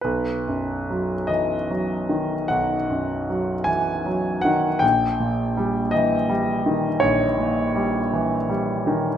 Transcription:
<<
  \new Staff \with { instrumentName = "Grand piano" } { \time 12/8 \key b \major \tempo 4. = 53 b'4. dis''4. fis''4. gis''4 fis''8 | g''4. dis''4. cis''2. | }
  \new Staff \with { instrumentName = "Grand piano" } { \clef bass \time 12/8 \key b \major b,,8 fis,8 fis8 e8 fis8 dis8 b,,8 fis,8 fis8 e8 fis8 dis8 | ais,,8 ais,8 g8 e8 g8 dis8 ais,,8 ais,8 g8 e8 g8 dis8 | }
>>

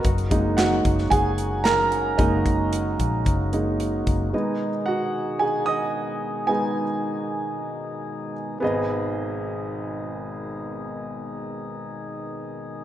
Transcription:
<<
  \new Staff \with { instrumentName = "Grand piano" } { \time 4/4 \key gis \minor \tempo 4 = 112 r4 <fis' fis''>4 <gis' gis''>4 <ais' ais''>4 | dis''2 r2 | r4 <fis' fis''>4 <gis' gis''>8 <dis'' dis'''>4. | <gis' gis''>2.~ <gis' gis''>8 r8 |
<b gis' dis''>1~ | <b gis' dis''>1 | }
  \new Staff \with { instrumentName = "Grand piano" } { \time 4/4 \key gis \minor r8 <gis ais dis'>2.~ <gis ais dis'>8 | <gis ais dis'>4. r4 <gis ais dis'>8 r4 | <gis b dis'>8 r2. r8 | <gis b dis'>8 r2. r8 |
gis,,1~ | gis,,1 | }
  \new Staff \with { instrumentName = "Tonewheel organ" } { \clef bass \time 4/4 \key gis \minor <cis fis ais dis' fis'>1~ | <cis fis ais dis' fis'>1 | <b, dis gis dis' gis'>1~ | <b, dis gis dis' gis'>1 |
<b, dis gis dis' gis'>1~ | <b, dis gis dis' gis'>1 | }
  \new Staff \with { instrumentName = "Fingered electric bass" } { \clef bass \time 4/4 \key gis \minor fis,,4. fis,,8 fis,,2 | fis,,4. ais,,8 fis,,4. fis,,8 | r1 | r1 |
r1 | r1 | }
  \new DrumStaff \with { instrumentName = "Drums" } \drummode { \time 4/4 <hh bd>16 hh16 <hh bd>8 <hc hh sn>8 <hh bd>16 sn16 <hh bd>8 hh8 <hc hh sn>8 hh8 | <hh bd>8 <hh bd>8 hh8 <hh bd>8 <hh bd>8 hh8 hh8 <hh bd>8 | r4 r4 r4 r4 | r4 r4 r4 r4 |
r4 r4 r4 r4 | r4 r4 r4 r4 | }
>>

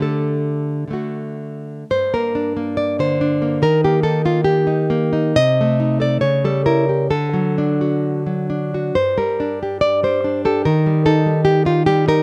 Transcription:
\new Staff \with { instrumentName = "Nylon-string guitar" } { \time 2/4 \key g \minor \tempo 4 = 69 << { <d a g' a'>4 <d a fis'>4 | c''16 bes'8. d''16 c''8. | bes'16 g'16 a'16 f'16 g'4 | ees''8. d''16 cis''16 a'16 ais'8 |
a'4. r8 | c''16 bes'8. d''16 c''8 a'16 | bes'8 a'8 g'16 f'16 g'16 bes'16 | } \\ { r2 | g,16 bes16 d'16 bes8 d16 d'16 bes16 | ees16 bes16 ees'16 bes8 ees'16 bes16 ees'16 | c16 a16 ees'16 a'16 cis16 g16 e'16 g'16 |
d16 fis16 d'16 fis'8 fis16 d'16 fis'16 | g,16 g16 d'16 g'8 g16 d'16 g'16 | ees16 g16 ees'16 g8 ees'16 g16 ees'16 | } >> }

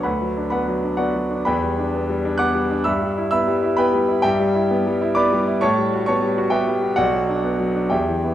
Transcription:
<<
  \new Staff \with { instrumentName = "Grand piano" } { \time 3/4 \key e \dorian \tempo 4 = 130 <b' fis'' b''>4 <b' fis'' b''>4 <fis' d'' fis''>4 | <b' g'' b''>2 <fis'' d''' fis'''>4 | <e'' b'' e'''>4 <e'' b'' e'''>4 <b' g'' b''>4 | \key b \minor <g' e'' g''>2 <d'' b'' d'''>4 |
<cis'' a'' cis'''>4 <cis'' a'' cis'''>4 <g' e'' g''>4 | <fis' d'' fis''>2 <g' e'' g''>4 | }
  \new Staff \with { instrumentName = "Grand piano" } { \time 3/4 \key e \dorian \tuplet 3/2 { d,8 fis8 d'8 b8 fis8 d'8 b8 fis8 d'8 } | \tuplet 3/2 { e,8 g8 d'8 b8 g8 d'8 b8 g8 d'8 } | \tuplet 3/2 { g,8 g8 e'8 b8 g8 e'8 b8 g8 e'8 } | \key b \minor \tuplet 3/2 { g,8 g8 e'8 b8 g8 e'8 b8 g8 e'8 } |
\tuplet 3/2 { a,8 g8 fis'8 b8 g8 fis'8 b8 g8 fis'8 } | \tuplet 3/2 { b,,8 fis8 d'8 b8 fis8 d'8 e,8 e8 <b e'>8 } | }
>>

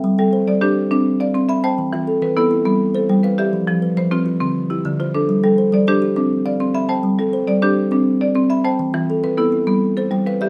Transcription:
<<
  \new Staff \with { instrumentName = "Kalimba" } { \time 12/8 \key g \mixolydian \tempo 4. = 137 <e'' g''>8 a'8 c''4 c''4. r8 f''4 b''8 g''8~ | g''8 f'8 a'4 a'8 e'4 r8 c''4 f''8 d''8~ | d''8 g'8 b'4 b'8 f'4 r8 g'4 c''8 a'8~ | a'8 a'8 c''4 c''8 g'4 r8 f''4 b''8 g''8~ |
g''8 a'8 c''4 c''4. r4. b''8 g''8~ | g''8 f'8 a'4 a'8 e'4 r8 c''4 f''8 d''8 | }
  \new Staff \with { instrumentName = "Kalimba" } { \clef bass \time 12/8 \key g \mixolydian g4 r8 g4 r8 c'4 r8 c'4 r8 | e4 r8 e4 r8 g4 r8 g4 r8 | f4 r8 f4 r8 d4 r8 d4 r8 | g4 r8 g4 r8 c'4 r8 c'4 r8 |
g4 r8 g4 r8 c'4 r8 c'4 r8 | e4 r8 e4 r8 g4 r8 g4 r8 | }
  \new Staff \with { instrumentName = "Marimba" } { \time 12/8 \key g \mixolydian << { r4. d''8 g'4. r8 d''4 e''8 a''8~ | a''4 r8 b'8 e'4. r8 a'4 b'8 e''8~ | e''4 r8 c''8 f'4. r8 e'4 f'4~ | f'8 r4 d''8 g'4. r8 d''4 e''8 a''8~ |
a''4 r8 d''8 g'4. r8 d''4 e''8 a''8~ | a''4 r8 b'8 e'4. r8 a'4 b'8 e''8 | } \\ { r8 g4 r8 d'4 d'8 r4 c'4 c''8~ | c''8 e4 r8 b4 b8 r4 g4 g'8~ | g'8 f4 r8 c'4 c'8 r4 d4 d'8~ | d'8 g4 r8 d'4 d'8 r4 c'4 c''8~ |
c''8 g4 r8 d'4 d'8 r4 c'4 c''8~ | c''8 e4 r8 b4 b8 r4 g4 g'8 | } >> }
>>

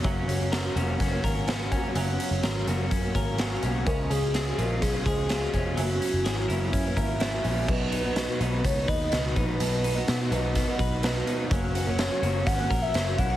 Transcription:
<<
  \new Staff \with { instrumentName = "Soft synth lead" } { \time 4/4 \key fis \major \tempo 4 = 126 r1 | r1 | ais'8 gis'4 ais'8 gis'2 | fis'2. r4 |
\key b \lydian b'2 cis''8 dis''4 b'8~ | b'4. r2 r8 | r4 cis''4 fis''8. e''8. fis''8 | }
  \new Staff \with { instrumentName = "Clean electric guitar" } { \time 4/4 \key fis \major fis8 cis'8 ais'8 fis'8 cis'8 ais'8 fis'8 cis'8 | fis8 cis'8 ais'8 fis'8 cis'8 ais'8 fis'8 cis'8 | cis8 cis'8 gis'8 eis'8 cis'8 gis'8 eis'8 cis'8 | fis8 cis'8 gis'16 ais'16 e'8 cis'8 ais'8 e'8 cis'8 |
\key b \lydian b,8 dis'8 b8 dis'8 b8 b'8 b8 dis'8 | b,8 dis'8 b8 dis'8 b8 b'8 b8 dis'8 | fis8 fis'8 cis'8 fis'8 cis'8 ais'8 cis'8 e'16 fis'16 | }
  \new Staff \with { instrumentName = "Twelve-string acoustic guitar" } { \clef bass \time 4/4 \key fis \major <fis, cis fis ais cis'>4. <cis fis ais cis'>8. <fis ais cis'>16 <cis fis ais cis'>8 <cis fis ais cis'>8 <cis fis ais cis'>8 | <fis, cis fis ais cis'>4. <cis fis ais cis'>8. <fis ais cis'>16 <cis fis ais cis'>8 <cis fis ais cis'>8 <cis fis ais cis'>8 | <cis eis gis cis'>4. <cis eis gis cis'>8. <eis gis cis'>16 <cis eis gis cis'>8 <cis eis gis cis'>8 <cis eis gis cis'>8 | <fis, cis e ais cis'>4. <cis e ais cis'>8. <e ais cis'>16 <cis e ais cis'>8 <cis e ais cis'>8 <cis e ais cis'>8 |
\key b \lydian <b, fis b dis'>8. <b, fis b dis'>8. <b, fis b dis'>8. <fis b dis'>8. <b, fis b dis'>4 | <b, fis b dis'>8. <b, fis b dis'>8. <b, fis b dis'>8. <fis b dis'>8. <b, fis b dis'>4 | <cis fis ais cis'>8. <fis, cis fis ais cis'>8. <cis fis ais cis'>8. <fis ais cis'>8. <cis fis ais cis'>4 | }
  \new Staff \with { instrumentName = "Picked electric bass" } { \clef bass \time 4/4 \key fis \major fis,,8 fis,,4 eis,,8 fis,,8 gis,,4 eis,,8 | fis,,8 r16 fis,,16 gis,,8 fis,,8 fis,8 gis,,4 b,,8 | cis,8 cis,4 ais,,8 b,,8 cis,4 eis,,8 | fis,,8 r16 fis,,16 gis,,8 fis,,8 fis,8 gis,,4 ais,,8 |
\key b \lydian b,,4~ b,,16 r16 b,,8 cis,8 dis,8 cis,8 ais,,8 | b,,4 b,8 b,,8. r16 b,,4 r8 | fis,,4~ fis,,16 r16 fis,,8 gis,,8 ais,,8 fis,,8 b,,8 | }
  \new DrumStaff \with { instrumentName = "Drums" } \drummode { \time 4/4 <hh bd>8 hh8 <hh sn>8 hh8 <hh bd sn>8 <hh bd>8 <hh sn>8 <hh bd>8 | hh8 hh8 <hh sn>8 hh8 <hh bd>8 <hh bd>8 <hh sn>8 hh8 | <hh bd>8 hh8 <hh sn>8 hh8 <hh bd sn>8 <hh bd>8 <hh sn>8 <hh bd>8 | hh8 hh8 <hh sn>8 hh8 <hh bd>8 <hh bd>8 <hh sn>8 hho8 |
<cymc bd>8 hh8 <hh sn>8 hh8 <hh bd>8 <hh bd>8 <hh sn>8 <hh bd>8 | hh8 hh8 <hh sn>8 hh8 <hh bd sn>8 <hh bd>8 <hh sn>8 hh8 | <hh bd>8 hh8 <hh sn>8 hh8 <hh bd sn>8 <hh bd>8 <hh sn>8 <hh bd>8 | }
>>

